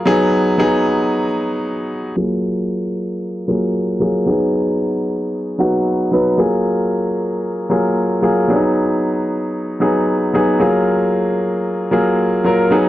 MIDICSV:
0, 0, Header, 1, 2, 480
1, 0, Start_track
1, 0, Key_signature, 6, "major"
1, 0, Tempo, 527241
1, 58, Time_signature, 4, 2, 24, 8
1, 11734, End_track
2, 0, Start_track
2, 0, Title_t, "Grand piano"
2, 0, Program_c, 0, 0
2, 0, Control_c, 0, 64, 127
2, 50, Note_on_c, 0, 54, 97
2, 54, Note_on_c, 0, 59, 83
2, 59, Note_on_c, 0, 63, 77
2, 62, Note_on_c, 0, 68, 103
2, 71, Control_c, 0, 64, 0
2, 229, Control_c, 0, 64, 127
2, 353, Note_off_c, 0, 54, 0
2, 356, Note_off_c, 0, 59, 0
2, 358, Note_off_c, 0, 63, 0
2, 359, Note_off_c, 0, 68, 0
2, 529, Note_on_c, 0, 54, 76
2, 534, Note_on_c, 0, 59, 79
2, 540, Note_on_c, 0, 63, 83
2, 543, Note_on_c, 0, 68, 94
2, 1132, Note_off_c, 0, 54, 0
2, 1134, Note_off_c, 0, 59, 0
2, 1137, Note_off_c, 0, 63, 0
2, 1138, Note_off_c, 0, 68, 0
2, 1971, Note_on_c, 0, 54, 83
2, 1975, Note_on_c, 0, 58, 70
2, 1979, Note_on_c, 0, 65, 67
2, 1983, Note_on_c, 0, 68, 85
2, 1985, Control_c, 0, 64, 0
2, 2158, Control_c, 0, 64, 127
2, 2572, Note_off_c, 0, 54, 0
2, 2574, Note_off_c, 0, 58, 0
2, 2576, Note_off_c, 0, 65, 0
2, 2578, Note_off_c, 0, 68, 0
2, 3166, Note_on_c, 0, 54, 69
2, 3169, Note_on_c, 0, 58, 66
2, 3175, Note_on_c, 0, 65, 61
2, 3177, Note_on_c, 0, 68, 73
2, 3469, Note_off_c, 0, 54, 0
2, 3471, Note_off_c, 0, 58, 0
2, 3474, Note_off_c, 0, 65, 0
2, 3475, Note_off_c, 0, 68, 0
2, 3642, Note_on_c, 0, 54, 78
2, 3647, Note_on_c, 0, 58, 61
2, 3651, Note_on_c, 0, 65, 72
2, 3654, Note_on_c, 0, 68, 84
2, 3805, Note_off_c, 0, 54, 0
2, 3807, Note_off_c, 0, 58, 0
2, 3809, Note_off_c, 0, 65, 0
2, 3811, Note_off_c, 0, 68, 0
2, 3881, Note_on_c, 0, 54, 77
2, 3885, Note_on_c, 0, 59, 76
2, 3892, Note_on_c, 0, 63, 64
2, 3895, Note_on_c, 0, 68, 91
2, 3902, Control_c, 0, 64, 0
2, 4053, Control_c, 0, 64, 127
2, 4487, Note_off_c, 0, 54, 0
2, 4489, Note_off_c, 0, 59, 0
2, 4493, Note_off_c, 0, 63, 0
2, 4494, Note_off_c, 0, 68, 0
2, 5085, Note_on_c, 0, 54, 67
2, 5088, Note_on_c, 0, 59, 66
2, 5092, Note_on_c, 0, 63, 63
2, 5099, Note_on_c, 0, 66, 87
2, 5389, Note_off_c, 0, 54, 0
2, 5391, Note_off_c, 0, 59, 0
2, 5393, Note_off_c, 0, 63, 0
2, 5396, Note_off_c, 0, 66, 0
2, 5569, Note_on_c, 0, 54, 76
2, 5572, Note_on_c, 0, 59, 68
2, 5579, Note_on_c, 0, 63, 67
2, 5583, Note_on_c, 0, 71, 86
2, 5729, Note_off_c, 0, 54, 0
2, 5731, Note_off_c, 0, 59, 0
2, 5734, Note_off_c, 0, 63, 0
2, 5736, Note_off_c, 0, 71, 0
2, 5808, Note_on_c, 0, 54, 86
2, 5813, Note_on_c, 0, 58, 81
2, 5818, Note_on_c, 0, 65, 73
2, 5822, Note_on_c, 0, 68, 97
2, 5824, Control_c, 0, 64, 0
2, 6005, Control_c, 0, 64, 127
2, 6411, Note_off_c, 0, 54, 0
2, 6414, Note_off_c, 0, 58, 0
2, 6417, Note_off_c, 0, 65, 0
2, 6418, Note_off_c, 0, 68, 0
2, 7006, Note_on_c, 0, 54, 78
2, 7011, Note_on_c, 0, 58, 69
2, 7019, Note_on_c, 0, 65, 68
2, 7019, Note_on_c, 0, 68, 75
2, 7310, Note_off_c, 0, 54, 0
2, 7313, Note_off_c, 0, 58, 0
2, 7317, Note_off_c, 0, 65, 0
2, 7317, Note_off_c, 0, 68, 0
2, 7484, Note_on_c, 0, 54, 74
2, 7489, Note_on_c, 0, 58, 71
2, 7492, Note_on_c, 0, 65, 72
2, 7497, Note_on_c, 0, 68, 94
2, 7647, Note_off_c, 0, 54, 0
2, 7650, Note_off_c, 0, 58, 0
2, 7651, Note_off_c, 0, 65, 0
2, 7654, Note_off_c, 0, 68, 0
2, 7723, Note_on_c, 0, 54, 80
2, 7729, Note_on_c, 0, 59, 73
2, 7733, Note_on_c, 0, 62, 61
2, 7737, Note_on_c, 0, 68, 81
2, 7745, Control_c, 0, 64, 0
2, 7789, Note_on_c, 0, 63, 75
2, 7798, Note_off_c, 0, 62, 0
2, 7905, Control_c, 0, 64, 127
2, 8330, Note_off_c, 0, 54, 0
2, 8333, Note_off_c, 0, 59, 0
2, 8337, Note_off_c, 0, 68, 0
2, 8362, Note_off_c, 0, 63, 0
2, 8922, Note_on_c, 0, 54, 68
2, 8928, Note_on_c, 0, 59, 67
2, 8933, Note_on_c, 0, 63, 66
2, 8936, Note_on_c, 0, 68, 77
2, 9229, Note_off_c, 0, 54, 0
2, 9232, Note_off_c, 0, 59, 0
2, 9234, Note_off_c, 0, 63, 0
2, 9236, Note_off_c, 0, 68, 0
2, 9409, Note_on_c, 0, 54, 70
2, 9415, Note_on_c, 0, 59, 72
2, 9418, Note_on_c, 0, 63, 66
2, 9422, Note_on_c, 0, 68, 91
2, 9570, Note_off_c, 0, 54, 0
2, 9573, Note_off_c, 0, 59, 0
2, 9575, Note_off_c, 0, 63, 0
2, 9576, Note_off_c, 0, 68, 0
2, 9645, Note_on_c, 0, 54, 81
2, 9649, Note_on_c, 0, 58, 75
2, 9655, Note_on_c, 0, 65, 74
2, 9659, Note_on_c, 0, 68, 89
2, 9667, Control_c, 0, 64, 0
2, 9801, Control_c, 0, 64, 127
2, 10251, Note_off_c, 0, 54, 0
2, 10253, Note_off_c, 0, 58, 0
2, 10256, Note_off_c, 0, 65, 0
2, 10258, Note_off_c, 0, 68, 0
2, 10845, Note_on_c, 0, 54, 79
2, 10850, Note_on_c, 0, 58, 70
2, 10853, Note_on_c, 0, 65, 67
2, 10858, Note_on_c, 0, 68, 80
2, 11150, Note_off_c, 0, 54, 0
2, 11153, Note_off_c, 0, 58, 0
2, 11155, Note_off_c, 0, 65, 0
2, 11157, Note_off_c, 0, 68, 0
2, 11329, Note_on_c, 0, 54, 84
2, 11333, Note_on_c, 0, 58, 65
2, 11338, Note_on_c, 0, 65, 70
2, 11343, Note_on_c, 0, 70, 89
2, 11490, Note_off_c, 0, 54, 0
2, 11492, Note_off_c, 0, 58, 0
2, 11495, Note_off_c, 0, 65, 0
2, 11497, Note_off_c, 0, 70, 0
2, 11565, Note_on_c, 0, 54, 83
2, 11571, Note_on_c, 0, 59, 73
2, 11576, Note_on_c, 0, 63, 79
2, 11580, Note_on_c, 0, 68, 89
2, 11588, Control_c, 0, 64, 0
2, 11734, Note_off_c, 0, 54, 0
2, 11734, Note_off_c, 0, 59, 0
2, 11734, Note_off_c, 0, 63, 0
2, 11734, Note_off_c, 0, 68, 0
2, 11734, End_track
0, 0, End_of_file